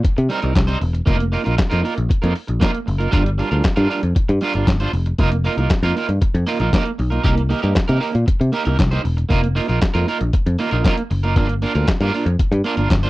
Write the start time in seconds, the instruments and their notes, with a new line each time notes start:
0.04 muted clean electric guitar stroke, muted picked electric bass stroke, kick, closed hi-hat
0.17 picked electric bass C3, muted clean electric guitar stroke, closed hi-hat
0.29 clean electric guitar G3 C4 D#4 A#4, open hi-hat
0.42 picked electric bass C2, clean electric guitar G3 C4 D#4 A#4, closed hi-hat
0.55 picked electric bass C2, muted clean electric guitar stroke, kick, snare, clap, closed hi-hat
0.67 clean electric guitar G3 C4 D#4 C5, closed hi-hat
0.80 picked electric bass E1, muted clean electric guitar stroke, open hi-hat
0.93 muted clean electric guitar stroke, closed hi-hat
1.06 picked electric bass F1, clean electric guitar A#3 D#4 F4 A#4, kick, closed hi-hat
1.19 muted clean electric guitar stroke, closed hi-hat
1.32 clean electric guitar A#3 D#4 F4 A#4, open hi-hat
1.44 picked electric bass A#1, clean electric guitar A#3 D#4 F4 A#4, closed hi-hat
1.57 muted clean electric guitar stroke, muted picked electric bass stroke, kick, snare, clap, closed hi-hat
1.70 picked electric bass F2, clean electric guitar A#3 D#4 F4 A#4, closed hi-hat
1.83 clean electric guitar A#3 D#4 F4 A#4, open hi-hat
1.96 picked electric bass A#1, muted clean electric guitar stroke, closed hi-hat
2.09 muted clean electric guitar stroke, muted picked electric bass stroke, kick, closed hi-hat
2.22 picked electric bass F2, clean electric guitar A#3 D#4 F4 A#4, closed hi-hat
2.36 open hi-hat
2.47 picked electric bass A#1, muted clean electric guitar stroke, closed hi-hat
2.60 clean electric guitar A#3 D#4 F4 A#4, kick, snare, clap, closed hi-hat
2.73 muted clean electric guitar stroke, closed hi-hat
2.86 picked electric bass F#1, muted clean electric guitar stroke, open hi-hat
2.98 clean electric guitar A#3 D#4 F4 A#4, closed hi-hat
3.11 picked electric bass G1, clean electric guitar G3 D4 F4 A#4, kick, closed hi-hat
3.25 muted clean electric guitar stroke, closed hi-hat
3.38 clean electric guitar G3 D4 F4 A#4, open hi-hat
3.51 picked electric bass D2, clean electric guitar G3 D4 F4 A#4, closed hi-hat
3.64 muted clean electric guitar stroke, muted picked electric bass stroke, kick, snare, clap, closed hi-hat
3.76 picked electric bass G2, clean electric guitar G3 D4 F4 A#4, closed hi-hat
3.89 clean electric guitar G3 D4 F4 A#4, open hi-hat
4.03 picked electric bass F2, muted clean electric guitar stroke, closed hi-hat
4.15 muted clean electric guitar stroke, muted picked electric bass stroke, kick, closed hi-hat
4.29 picked electric bass G2, muted clean electric guitar stroke, closed hi-hat
4.41 clean electric guitar G3 D4 F4 A#4, open hi-hat
4.54 picked electric bass G1, clean electric guitar G3 D4 F4 A#4, closed hi-hat
4.67 picked electric bass G1, muted clean electric guitar stroke, kick, snare, clap, closed hi-hat
4.80 clean electric guitar G3 D4 F4 C5, closed hi-hat
4.93 picked electric bass F1, muted clean electric guitar stroke, open hi-hat
5.06 muted clean electric guitar stroke, closed hi-hat
5.18 picked electric bass F1, clean electric guitar A#3 D#4 F4 A#4, kick, closed hi-hat
5.32 muted clean electric guitar stroke, closed hi-hat
5.44 clean electric guitar A#3 D#4 F4 A#4, open hi-hat
5.57 picked electric bass C2, clean electric guitar A#3 D#4 F4 A#4, closed hi-hat
5.70 muted clean electric guitar stroke, kick, snare, clap, closed hi-hat
5.83 picked electric bass F2, clean electric guitar A#3 D#4 F4 A#4, closed hi-hat
5.96 clean electric guitar A#3 D#4 F4 A#4, open hi-hat
6.09 picked electric bass G2, muted clean electric guitar stroke, closed hi-hat
6.21 muted clean electric guitar stroke, muted picked electric bass stroke, kick, closed hi-hat
6.34 picked electric bass F2, muted clean electric guitar stroke, closed hi-hat
6.47 clean electric guitar A#3 D#4 F4 A#4, open hi-hat
6.60 picked electric bass A#1, clean electric guitar A#3 D#4 F4 A#4, closed hi-hat
6.73 clean electric guitar A#3 D#4 F4 A#4, kick, snare, clap, closed hi-hat
6.86 muted clean electric guitar stroke, closed hi-hat
6.98 picked electric bass B1, muted clean electric guitar stroke, open hi-hat
7.10 clean electric guitar A#3 D#4 F4 A#4, closed hi-hat
7.24 picked electric bass C2, clean electric guitar A#3 D#4 G4 A#4, kick, closed hi-hat
7.37 muted clean electric guitar stroke, closed hi-hat
7.49 clean electric guitar A#3 D#4 G4 A#4, open hi-hat
7.62 picked electric bass G2, clean electric guitar A#3 D#4 G4 A#4, closed hi-hat
7.75 muted clean electric guitar stroke, muted picked electric bass stroke, kick, snare, clap, closed hi-hat
7.88 picked electric bass C3, clean electric guitar A#3 D#4 G4 A#4, closed hi-hat
8.00 clean electric guitar A#3 D#4 G4 A#4, open hi-hat
8.13 picked electric bass A#2, muted clean electric guitar stroke, closed hi-hat
8.26 muted clean electric guitar stroke, muted picked electric bass stroke, kick, closed hi-hat
8.40 picked electric bass C3, muted clean electric guitar stroke, closed hi-hat
8.52 clean electric guitar A#3 D#4 G4 A#4, open hi-hat
8.65 picked electric bass C2, clean electric guitar A#3 D#4 G4 A#4, closed hi-hat
8.79 picked electric bass C2, muted clean electric guitar stroke, kick, snare, clap, closed hi-hat
8.91 clean electric guitar A#3 D#4 G4 C5, closed hi-hat
9.04 picked electric bass E1, muted clean electric guitar stroke, open hi-hat
9.17 muted clean electric guitar stroke, closed hi-hat
9.29 picked electric bass F1, clean electric guitar A#3 D#4 F4 A#4, kick, closed hi-hat
9.43 muted clean electric guitar stroke, closed hi-hat
9.55 clean electric guitar A#3 D#4 F4 A#4, open hi-hat
9.68 picked electric bass A#1, clean electric guitar A#3 D#4 F4 A#4, closed hi-hat
9.81 muted clean electric guitar stroke, muted picked electric bass stroke, kick, snare, clap, closed hi-hat
9.94 picked electric bass F2, clean electric guitar A#3 D#4 F4 A#4, closed hi-hat
10.07 clean electric guitar A#3 D#4 F4 A#4, open hi-hat
10.20 picked electric bass A#1, muted clean electric guitar stroke, closed hi-hat
10.33 muted clean electric guitar stroke, muted picked electric bass stroke, kick, closed hi-hat
10.46 picked electric bass F2, muted clean electric guitar stroke, closed hi-hat
10.59 clean electric guitar A#3 D#4 F4 A#4, open hi-hat
10.71 picked electric bass A#1, clean electric guitar A#3 D#4 F4 A#4, closed hi-hat
10.84 clean electric guitar A#3 D#4 F4 A#4, kick, snare, clap, closed hi-hat
10.97 muted clean electric guitar stroke, closed hi-hat
11.11 picked electric bass F#1, muted clean electric guitar stroke, open hi-hat
11.23 clean electric guitar A#3 D#4 F4 A#4, closed hi-hat
11.36 picked electric bass G1, clean electric guitar A#3 D4 F4 A#4, kick, closed hi-hat
11.49 muted clean electric guitar stroke, closed hi-hat
11.62 clean electric guitar A#3 D4 F4 A#4, open hi-hat
11.75 picked electric bass D2, clean electric guitar A#3 D4 F4 A#4, closed hi-hat
11.87 muted clean electric guitar stroke, muted picked electric bass stroke, kick, snare, clap, closed hi-hat
12.01 picked electric bass G2, clean electric guitar A#3 D4 F4 A#4, closed hi-hat
12.14 clean electric guitar A#3 D4 F4 A#4, open hi-hat
12.26 picked electric bass F2, muted clean electric guitar stroke, closed hi-hat
12.39 muted clean electric guitar stroke, muted picked electric bass stroke, kick, closed hi-hat
12.52 picked electric bass G2, muted clean electric guitar stroke, closed hi-hat
12.64 clean electric guitar A#3 D4 F4 A#4, open hi-hat
12.77 picked electric bass G1, clean electric guitar A#3 D4 F4 A#4, closed hi-hat
12.90 picked electric bass G1, muted clean electric guitar stroke, kick, snare, clap, closed hi-hat
13.03 clean electric guitar A#3 D4 F4 C5, closed hi-hat